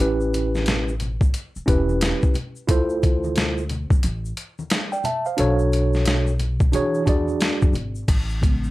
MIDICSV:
0, 0, Header, 1, 5, 480
1, 0, Start_track
1, 0, Key_signature, 3, "major"
1, 0, Tempo, 674157
1, 1914, Time_signature, 4, 2, 24, 8
1, 6198, End_track
2, 0, Start_track
2, 0, Title_t, "Tine electric piano"
2, 0, Program_c, 0, 4
2, 0, Note_on_c, 0, 61, 80
2, 0, Note_on_c, 0, 64, 75
2, 0, Note_on_c, 0, 67, 77
2, 8, Note_on_c, 0, 71, 91
2, 649, Note_off_c, 0, 61, 0
2, 652, Note_off_c, 0, 64, 0
2, 657, Note_off_c, 0, 67, 0
2, 662, Note_off_c, 0, 71, 0
2, 1180, Note_on_c, 0, 61, 86
2, 1187, Note_on_c, 0, 64, 83
2, 1195, Note_on_c, 0, 67, 78
2, 1204, Note_on_c, 0, 71, 95
2, 1667, Note_off_c, 0, 61, 0
2, 1670, Note_off_c, 0, 64, 0
2, 1674, Note_off_c, 0, 67, 0
2, 1679, Note_off_c, 0, 71, 0
2, 1903, Note_on_c, 0, 64, 88
2, 1910, Note_on_c, 0, 65, 77
2, 1919, Note_on_c, 0, 69, 75
2, 1929, Note_on_c, 0, 72, 93
2, 2569, Note_off_c, 0, 64, 0
2, 2573, Note_off_c, 0, 65, 0
2, 2577, Note_off_c, 0, 69, 0
2, 2582, Note_off_c, 0, 72, 0
2, 3504, Note_on_c, 0, 79, 66
2, 3509, Note_on_c, 0, 74, 52
2, 3588, Note_off_c, 0, 79, 0
2, 3591, Note_off_c, 0, 74, 0
2, 3594, Note_on_c, 0, 81, 66
2, 3597, Note_on_c, 0, 76, 61
2, 3738, Note_off_c, 0, 81, 0
2, 3739, Note_off_c, 0, 76, 0
2, 3745, Note_on_c, 0, 77, 64
2, 3750, Note_on_c, 0, 72, 48
2, 3822, Note_on_c, 0, 62, 82
2, 3828, Note_on_c, 0, 66, 77
2, 3838, Note_on_c, 0, 69, 76
2, 3846, Note_on_c, 0, 73, 96
2, 3973, Note_off_c, 0, 77, 0
2, 3976, Note_off_c, 0, 72, 0
2, 4489, Note_off_c, 0, 62, 0
2, 4492, Note_off_c, 0, 66, 0
2, 4497, Note_off_c, 0, 69, 0
2, 4501, Note_off_c, 0, 73, 0
2, 4784, Note_on_c, 0, 62, 80
2, 4793, Note_on_c, 0, 66, 72
2, 4802, Note_on_c, 0, 68, 83
2, 4810, Note_on_c, 0, 73, 101
2, 4994, Note_off_c, 0, 62, 0
2, 4998, Note_off_c, 0, 66, 0
2, 5002, Note_off_c, 0, 68, 0
2, 5007, Note_off_c, 0, 73, 0
2, 5022, Note_on_c, 0, 62, 88
2, 5031, Note_on_c, 0, 66, 79
2, 5040, Note_on_c, 0, 68, 78
2, 5049, Note_on_c, 0, 74, 97
2, 5508, Note_off_c, 0, 62, 0
2, 5512, Note_off_c, 0, 66, 0
2, 5517, Note_off_c, 0, 68, 0
2, 5521, Note_off_c, 0, 74, 0
2, 5988, Note_on_c, 0, 49, 53
2, 5993, Note_on_c, 0, 56, 47
2, 5996, Note_on_c, 0, 59, 57
2, 6198, Note_off_c, 0, 49, 0
2, 6198, Note_off_c, 0, 56, 0
2, 6198, Note_off_c, 0, 59, 0
2, 6198, End_track
3, 0, Start_track
3, 0, Title_t, "Upright bass"
3, 0, Program_c, 1, 32
3, 0, Note_on_c, 1, 33, 97
3, 928, Note_off_c, 1, 33, 0
3, 1197, Note_on_c, 1, 28, 87
3, 1503, Note_off_c, 1, 28, 0
3, 1915, Note_on_c, 1, 38, 105
3, 2757, Note_off_c, 1, 38, 0
3, 2782, Note_on_c, 1, 41, 80
3, 2852, Note_off_c, 1, 41, 0
3, 2877, Note_on_c, 1, 33, 96
3, 3064, Note_off_c, 1, 33, 0
3, 3838, Note_on_c, 1, 35, 100
3, 4801, Note_on_c, 1, 52, 91
3, 4812, Note_off_c, 1, 35, 0
3, 5037, Note_on_c, 1, 40, 88
3, 5047, Note_off_c, 1, 52, 0
3, 5224, Note_off_c, 1, 40, 0
3, 5430, Note_on_c, 1, 42, 89
3, 5498, Note_off_c, 1, 42, 0
3, 5519, Note_on_c, 1, 32, 79
3, 5705, Note_off_c, 1, 32, 0
3, 5756, Note_on_c, 1, 33, 96
3, 6198, Note_off_c, 1, 33, 0
3, 6198, End_track
4, 0, Start_track
4, 0, Title_t, "Muted upright bass strokes"
4, 1111, Note_on_c, 9, 29, 45
4, 1182, Note_off_c, 9, 29, 0
4, 6198, End_track
5, 0, Start_track
5, 0, Title_t, "Drums"
5, 0, Note_on_c, 9, 82, 56
5, 69, Note_off_c, 9, 82, 0
5, 146, Note_on_c, 9, 82, 39
5, 218, Note_off_c, 9, 82, 0
5, 241, Note_on_c, 9, 63, 46
5, 241, Note_on_c, 9, 82, 48
5, 244, Note_on_c, 9, 42, 68
5, 312, Note_off_c, 9, 63, 0
5, 312, Note_off_c, 9, 82, 0
5, 315, Note_off_c, 9, 42, 0
5, 391, Note_on_c, 9, 63, 48
5, 391, Note_on_c, 9, 82, 33
5, 395, Note_on_c, 9, 38, 35
5, 462, Note_off_c, 9, 63, 0
5, 462, Note_off_c, 9, 82, 0
5, 467, Note_off_c, 9, 38, 0
5, 470, Note_on_c, 9, 42, 87
5, 484, Note_on_c, 9, 38, 94
5, 484, Note_on_c, 9, 64, 68
5, 484, Note_on_c, 9, 82, 65
5, 541, Note_off_c, 9, 42, 0
5, 555, Note_off_c, 9, 64, 0
5, 555, Note_off_c, 9, 82, 0
5, 556, Note_off_c, 9, 38, 0
5, 629, Note_on_c, 9, 82, 46
5, 700, Note_off_c, 9, 82, 0
5, 711, Note_on_c, 9, 42, 65
5, 721, Note_on_c, 9, 64, 54
5, 721, Note_on_c, 9, 82, 40
5, 783, Note_off_c, 9, 42, 0
5, 792, Note_off_c, 9, 64, 0
5, 792, Note_off_c, 9, 82, 0
5, 861, Note_on_c, 9, 36, 87
5, 867, Note_on_c, 9, 82, 49
5, 932, Note_off_c, 9, 36, 0
5, 939, Note_off_c, 9, 82, 0
5, 953, Note_on_c, 9, 42, 83
5, 957, Note_on_c, 9, 82, 58
5, 1024, Note_off_c, 9, 42, 0
5, 1029, Note_off_c, 9, 82, 0
5, 1108, Note_on_c, 9, 82, 48
5, 1180, Note_off_c, 9, 82, 0
5, 1194, Note_on_c, 9, 36, 87
5, 1195, Note_on_c, 9, 42, 76
5, 1195, Note_on_c, 9, 82, 43
5, 1266, Note_off_c, 9, 36, 0
5, 1266, Note_off_c, 9, 82, 0
5, 1267, Note_off_c, 9, 42, 0
5, 1346, Note_on_c, 9, 63, 51
5, 1346, Note_on_c, 9, 82, 37
5, 1417, Note_off_c, 9, 63, 0
5, 1417, Note_off_c, 9, 82, 0
5, 1432, Note_on_c, 9, 42, 113
5, 1436, Note_on_c, 9, 82, 66
5, 1441, Note_on_c, 9, 38, 113
5, 1504, Note_off_c, 9, 42, 0
5, 1507, Note_off_c, 9, 82, 0
5, 1513, Note_off_c, 9, 38, 0
5, 1585, Note_on_c, 9, 82, 48
5, 1588, Note_on_c, 9, 36, 90
5, 1656, Note_off_c, 9, 82, 0
5, 1659, Note_off_c, 9, 36, 0
5, 1667, Note_on_c, 9, 64, 56
5, 1667, Note_on_c, 9, 82, 42
5, 1676, Note_on_c, 9, 42, 76
5, 1739, Note_off_c, 9, 64, 0
5, 1739, Note_off_c, 9, 82, 0
5, 1747, Note_off_c, 9, 42, 0
5, 1822, Note_on_c, 9, 82, 43
5, 1893, Note_off_c, 9, 82, 0
5, 1912, Note_on_c, 9, 36, 99
5, 1912, Note_on_c, 9, 42, 98
5, 1913, Note_on_c, 9, 82, 57
5, 1984, Note_off_c, 9, 36, 0
5, 1984, Note_off_c, 9, 42, 0
5, 1984, Note_off_c, 9, 82, 0
5, 2061, Note_on_c, 9, 82, 40
5, 2133, Note_off_c, 9, 82, 0
5, 2157, Note_on_c, 9, 63, 46
5, 2157, Note_on_c, 9, 82, 44
5, 2159, Note_on_c, 9, 36, 89
5, 2161, Note_on_c, 9, 42, 70
5, 2228, Note_off_c, 9, 63, 0
5, 2228, Note_off_c, 9, 82, 0
5, 2230, Note_off_c, 9, 36, 0
5, 2232, Note_off_c, 9, 42, 0
5, 2307, Note_on_c, 9, 63, 52
5, 2307, Note_on_c, 9, 82, 38
5, 2378, Note_off_c, 9, 63, 0
5, 2378, Note_off_c, 9, 82, 0
5, 2390, Note_on_c, 9, 42, 86
5, 2401, Note_on_c, 9, 64, 66
5, 2401, Note_on_c, 9, 82, 66
5, 2404, Note_on_c, 9, 38, 98
5, 2461, Note_off_c, 9, 42, 0
5, 2472, Note_off_c, 9, 64, 0
5, 2472, Note_off_c, 9, 82, 0
5, 2476, Note_off_c, 9, 38, 0
5, 2548, Note_on_c, 9, 82, 46
5, 2619, Note_off_c, 9, 82, 0
5, 2631, Note_on_c, 9, 42, 66
5, 2637, Note_on_c, 9, 64, 57
5, 2637, Note_on_c, 9, 82, 38
5, 2702, Note_off_c, 9, 42, 0
5, 2709, Note_off_c, 9, 64, 0
5, 2709, Note_off_c, 9, 82, 0
5, 2780, Note_on_c, 9, 36, 95
5, 2786, Note_on_c, 9, 82, 50
5, 2851, Note_off_c, 9, 36, 0
5, 2858, Note_off_c, 9, 82, 0
5, 2869, Note_on_c, 9, 42, 92
5, 2877, Note_on_c, 9, 82, 59
5, 2940, Note_off_c, 9, 42, 0
5, 2948, Note_off_c, 9, 82, 0
5, 3029, Note_on_c, 9, 82, 52
5, 3100, Note_off_c, 9, 82, 0
5, 3112, Note_on_c, 9, 42, 76
5, 3115, Note_on_c, 9, 82, 44
5, 3183, Note_off_c, 9, 42, 0
5, 3186, Note_off_c, 9, 82, 0
5, 3266, Note_on_c, 9, 63, 51
5, 3266, Note_on_c, 9, 82, 38
5, 3337, Note_off_c, 9, 63, 0
5, 3337, Note_off_c, 9, 82, 0
5, 3348, Note_on_c, 9, 42, 109
5, 3356, Note_on_c, 9, 82, 65
5, 3357, Note_on_c, 9, 38, 112
5, 3419, Note_off_c, 9, 42, 0
5, 3427, Note_off_c, 9, 82, 0
5, 3428, Note_off_c, 9, 38, 0
5, 3506, Note_on_c, 9, 82, 43
5, 3577, Note_off_c, 9, 82, 0
5, 3587, Note_on_c, 9, 64, 61
5, 3587, Note_on_c, 9, 82, 41
5, 3594, Note_on_c, 9, 42, 74
5, 3659, Note_off_c, 9, 64, 0
5, 3659, Note_off_c, 9, 82, 0
5, 3666, Note_off_c, 9, 42, 0
5, 3741, Note_on_c, 9, 82, 43
5, 3812, Note_off_c, 9, 82, 0
5, 3829, Note_on_c, 9, 42, 99
5, 3833, Note_on_c, 9, 82, 55
5, 3901, Note_off_c, 9, 42, 0
5, 3904, Note_off_c, 9, 82, 0
5, 3980, Note_on_c, 9, 82, 42
5, 4051, Note_off_c, 9, 82, 0
5, 4077, Note_on_c, 9, 82, 47
5, 4082, Note_on_c, 9, 42, 67
5, 4148, Note_off_c, 9, 82, 0
5, 4153, Note_off_c, 9, 42, 0
5, 4224, Note_on_c, 9, 82, 35
5, 4235, Note_on_c, 9, 38, 37
5, 4296, Note_off_c, 9, 82, 0
5, 4306, Note_off_c, 9, 38, 0
5, 4311, Note_on_c, 9, 42, 86
5, 4313, Note_on_c, 9, 64, 67
5, 4313, Note_on_c, 9, 82, 66
5, 4325, Note_on_c, 9, 38, 93
5, 4382, Note_off_c, 9, 42, 0
5, 4384, Note_off_c, 9, 64, 0
5, 4384, Note_off_c, 9, 82, 0
5, 4397, Note_off_c, 9, 38, 0
5, 4464, Note_on_c, 9, 82, 48
5, 4535, Note_off_c, 9, 82, 0
5, 4552, Note_on_c, 9, 64, 54
5, 4552, Note_on_c, 9, 82, 39
5, 4553, Note_on_c, 9, 42, 70
5, 4623, Note_off_c, 9, 64, 0
5, 4623, Note_off_c, 9, 82, 0
5, 4625, Note_off_c, 9, 42, 0
5, 4701, Note_on_c, 9, 82, 49
5, 4702, Note_on_c, 9, 36, 94
5, 4772, Note_off_c, 9, 82, 0
5, 4773, Note_off_c, 9, 36, 0
5, 4792, Note_on_c, 9, 63, 45
5, 4792, Note_on_c, 9, 82, 59
5, 4795, Note_on_c, 9, 42, 90
5, 4863, Note_off_c, 9, 63, 0
5, 4863, Note_off_c, 9, 82, 0
5, 4866, Note_off_c, 9, 42, 0
5, 4945, Note_on_c, 9, 82, 48
5, 5016, Note_off_c, 9, 82, 0
5, 5032, Note_on_c, 9, 82, 43
5, 5035, Note_on_c, 9, 36, 81
5, 5037, Note_on_c, 9, 42, 76
5, 5103, Note_off_c, 9, 82, 0
5, 5106, Note_off_c, 9, 36, 0
5, 5109, Note_off_c, 9, 42, 0
5, 5184, Note_on_c, 9, 63, 51
5, 5184, Note_on_c, 9, 82, 38
5, 5255, Note_off_c, 9, 63, 0
5, 5255, Note_off_c, 9, 82, 0
5, 5273, Note_on_c, 9, 42, 106
5, 5273, Note_on_c, 9, 82, 68
5, 5282, Note_on_c, 9, 38, 113
5, 5344, Note_off_c, 9, 42, 0
5, 5344, Note_off_c, 9, 82, 0
5, 5353, Note_off_c, 9, 38, 0
5, 5424, Note_on_c, 9, 63, 60
5, 5424, Note_on_c, 9, 82, 44
5, 5429, Note_on_c, 9, 36, 95
5, 5495, Note_off_c, 9, 63, 0
5, 5495, Note_off_c, 9, 82, 0
5, 5500, Note_off_c, 9, 36, 0
5, 5506, Note_on_c, 9, 64, 59
5, 5506, Note_on_c, 9, 82, 42
5, 5521, Note_on_c, 9, 42, 68
5, 5578, Note_off_c, 9, 64, 0
5, 5578, Note_off_c, 9, 82, 0
5, 5592, Note_off_c, 9, 42, 0
5, 5663, Note_on_c, 9, 82, 45
5, 5734, Note_off_c, 9, 82, 0
5, 5754, Note_on_c, 9, 36, 100
5, 5755, Note_on_c, 9, 49, 84
5, 5756, Note_on_c, 9, 42, 89
5, 5758, Note_on_c, 9, 82, 57
5, 5826, Note_off_c, 9, 36, 0
5, 5827, Note_off_c, 9, 42, 0
5, 5827, Note_off_c, 9, 49, 0
5, 5829, Note_off_c, 9, 82, 0
5, 5906, Note_on_c, 9, 82, 37
5, 5977, Note_off_c, 9, 82, 0
5, 6001, Note_on_c, 9, 36, 89
5, 6002, Note_on_c, 9, 82, 43
5, 6005, Note_on_c, 9, 42, 64
5, 6072, Note_off_c, 9, 36, 0
5, 6074, Note_off_c, 9, 82, 0
5, 6076, Note_off_c, 9, 42, 0
5, 6151, Note_on_c, 9, 82, 36
5, 6198, Note_off_c, 9, 82, 0
5, 6198, End_track
0, 0, End_of_file